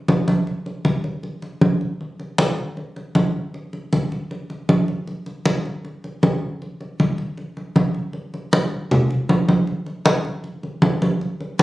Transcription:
0.08 high conga
0.28 high conga
0.47 high conga
0.66 high conga
0.85 high conga
1.04 high conga
1.23 high conga
1.42 high conga
1.61 high conga
1.81 high conga
2.01 high conga
2.20 high conga
2.38 high conga
2.58 high conga
2.77 high conga
2.96 high conga
3.15 high conga
3.54 high conga
3.73 high conga
3.93 high conga
4.12 high conga
4.31 high conga
4.50 high conga
4.69 high conga
4.88 high conga
5.07 high conga
5.26 high conga
5.46 high conga
5.65 high conga
5.85 high conga
6.04 high conga
6.23 high conga
6.62 high conga
6.81 high conga
7.00 high conga
7.18 high conga
7.38 high conga
7.57 high conga
7.76 high conga
7.94 high conga
8.13 high conga
8.34 high conga
8.53 high conga
8.91 high conga, low conga
9.10 high conga
9.29 high conga
9.48 high conga
9.67 high conga
9.86 high conga
10.06 high conga
10.25 high conga
10.44 high conga
10.63 high conga
10.82 high conga
11.02 high conga
11.21 high conga
11.40 high conga
11.59 high conga

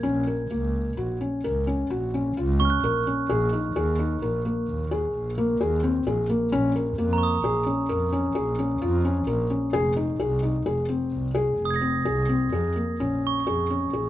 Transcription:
Already playing: G#6
0.03 A#1 C#4
0.27 A#4
0.51 C#2 A#3
0.97 A#1 F#4
1.21 C#4
1.44 C#2 A#4
1.67 C#4
1.90 A#1 F#4
2.14 C#4
2.37 C#2 F4
2.60 C#4 C#6
2.65 F6
2.70 F#6
2.83 A#1 A#4
3.07 C#4
3.29 A#1 G#4
3.53 D#4
3.76 D#2 G#4
3.99 D#4
4.22 A#1 A#4
4.45 A#3
4.68 D#2
4.91 G#4
5.14 A#1
5.38 A#3
5.60 D#2 G#4
5.83 C4
6.06 A#1 G#4
6.29 A#3
6.52 A#1 C#4
6.76 A#4
6.98 F2 A#3
7.13 A#5
7.18 C#6
7.23 D#6
7.44 A#1 G#4
7.66 C#4
7.89 F2 A#4
8.12 C#4
8.35 A#1 G#4
8.59 C#4
8.81 F2 F4
9.05 C#4
9.27 A#1 A#4
9.50 C#4
9.73 F1 G#4
9.96 D#4
10.20 C2 G#4
10.43 D#4
10.66 F1 G#4
10.89 C4
11.12 C2
11.35 G#4
11.58 F1
11.65 D#6
11.71 G#6
11.76 A#6
11.81 C4
12.05 C2 G#4
12.29 C4
12.52 F2 G#4
12.76 A#3
13.00 A#1 C#4
13.27 C#6
13.47 F2 G#4
13.70 C#4
13.93 A#1 G#4

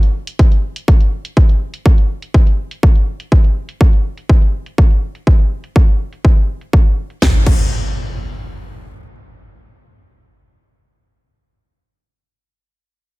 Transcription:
0.03 closed hi-hat
0.27 closed hi-hat
0.39 kick, closed hi-hat
0.52 closed hi-hat
0.76 closed hi-hat
0.88 kick, closed hi-hat
1.01 closed hi-hat
1.25 closed hi-hat
1.37 kick, closed hi-hat
1.49 closed hi-hat
1.74 closed hi-hat
1.86 kick, closed hi-hat
1.98 closed hi-hat
2.22 closed hi-hat
2.34 kick, closed hi-hat
2.47 closed hi-hat
2.71 closed hi-hat
2.83 kick, closed hi-hat
2.96 closed hi-hat
3.20 closed hi-hat
3.32 kick, closed hi-hat
3.44 closed hi-hat
3.69 closed hi-hat
3.81 kick, closed hi-hat
3.93 closed hi-hat
4.18 closed hi-hat
4.29 kick, closed hi-hat
4.42 closed hi-hat
4.66 closed hi-hat
4.78 kick, closed hi-hat
4.91 closed hi-hat
5.15 closed hi-hat
5.27 kick, closed hi-hat
5.39 closed hi-hat
5.64 closed hi-hat
5.76 kick, closed hi-hat
5.88 closed hi-hat
6.13 closed hi-hat
6.25 kick
6.37 closed hi-hat
6.61 closed hi-hat
6.73 kick
6.86 closed hi-hat
7.10 closed hi-hat
7.22 kick, snare, impact
7.46 kick, crash

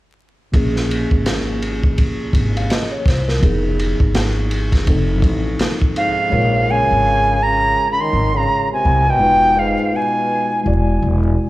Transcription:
0.52 A#1 F3 A#3 C#4 G#4, kick, ride
0.76 snare
0.91 ride
1.11 G#1, kick
1.26 snare, hi-hat pedal, ride
1.62 ride
1.83 kick
1.98 kick, ride
2.33 G#1, kick, ride
2.57 F5, ride
2.70 D#5, snare, hi-hat pedal, ride
2.92 C#5
3.06 C2 C5, kick, snare, ride
3.28 A#4, snare
3.40 F1 F3 B3 D#4, kick, ride
3.44 G#4
3.79 ride
4.00 G#1, kick
4.15 snare, hi-hat pedal, ride
4.51 ride
4.72 kick, snare, ride
4.86 F1 F3 C4 D#4 A4, kick, ride
5.22 A1, kick, ride
5.59 snare, hi-hat pedal, ride
5.82 kick
5.96 G#2 F5, ride
6.30 A#1 G#3 F4 A#4 C#5
6.69 C#3 G#5
6.91 G#1
7.42 C#3 A#5
7.90 C#3 B5
8.00 D#3 C6
8.13 G#1
8.36 C#3 A#5
8.72 C3 G#5
8.85 C2
9.07 B2 G5
9.19 F1 G#3 D#4 F4 B4
9.57 G#2 F5
9.93 B2 G#5
10.64 E1 G#3 E4 F#4 D5
11.02 E1

